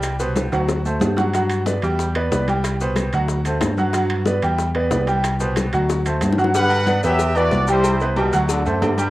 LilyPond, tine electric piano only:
\new Staff \with { instrumentName = "Tine electric piano" } { \clef bass \time 4/4 \key g \major \tempo 4 = 184 c,4. d,4. g,4~ | g,4. e,4. c,4~ | c,4. d,4. g,4~ | g,4. e,4. c,4~ |
c,4. d,4. g,4~ | g,4. e,4. c,4~ | c,4. d,4 fis,8 g,4 | }